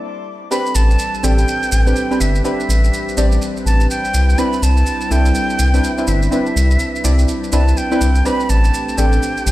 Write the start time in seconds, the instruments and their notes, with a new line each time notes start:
0.51 analog synth pad G3 C4 D4 A4 B4, synth stab C4 D4 G4 B4, flute B5, maracas
0.66 maracas
0.75 analog synth bass A1, flute A5, maracas
0.90 maracas
0.99 maracas
1.14 maracas
1.23 analog synth bass A1, synth stab C4 D4 G4 A4, flute G5, maracas
1.38 maracas
1.48 maracas
1.63 maracas
1.72 analog synth bass A1, maracas
1.86 synth stab C4 D4 G4 B4, maracas
1.96 maracas
2.11 synth stab C4 D4 G4 B4, maracas
2.21 analog synth bass G1, flute E5, maracas
2.35 maracas
2.44 synth stab C4 D4 G4 B4, analog synth pad G4, flute E5, maracas
2.60 maracas
2.69 analog synth bass A1, maracas
2.84 maracas
2.93 maracas
3.09 maracas
3.17 analog synth bass A1, synth stab C4 D4 G4 D5, maracas
3.32 maracas
3.42 maracas
3.57 maracas
3.66 analog synth bass A1, flute A5, maracas
3.80 maracas
3.90 flute G5, maracas
4.05 maracas
4.14 analog synth bass C2, analog synth pad E4, maracas
4.29 maracas
4.38 synth stab C4 D4 E4 B4, flute B5, maracas
4.53 maracas
4.63 analog synth bass C2, flute A5, maracas
4.77 maracas
4.86 maracas
5.01 maracas
5.10 analog synth bass C2, synth stab C4 D4 E4 A4, flute G5, maracas
5.25 maracas
5.35 maracas
5.50 maracas
5.59 analog synth bass C2, maracas
5.74 synth stab C4 D4 E4 B4, maracas
5.84 maracas
5.98 synth stab C4 D4 E4 B4, maracas
6.07 analog synth bass G1, flute E5, maracas
6.22 maracas
6.31 synth stab C4 D4 E4 B4, flute E5, maracas
6.46 maracas
6.56 analog synth bass C2, maracas
6.71 maracas
6.79 maracas
6.96 maracas
7.04 analog synth bass C2, synth stab C4 D4 E4 D5, maracas
7.19 maracas
7.28 maracas
7.44 maracas
7.52 analog synth bass C2, synth stab C4 D4 E4 B4, flute A5, maracas
7.68 maracas
7.77 flute G5, maracas
7.91 synth stab C4 D4 E4 B4, maracas
8.01 analog synth bass C2, maracas
8.15 maracas
8.25 analog synth pad A3 C4 G4, synth stab C4 D4 G4 B4, flute B5, maracas
8.40 maracas
8.49 analog synth bass A1, flute A5, maracas
8.64 maracas
8.74 maracas
8.89 maracas
8.97 analog synth bass A1, synth stab C4 D4 G4 A4, flute G5, maracas
9.13 maracas
9.23 maracas
9.37 maracas
9.46 analog synth bass A1, maracas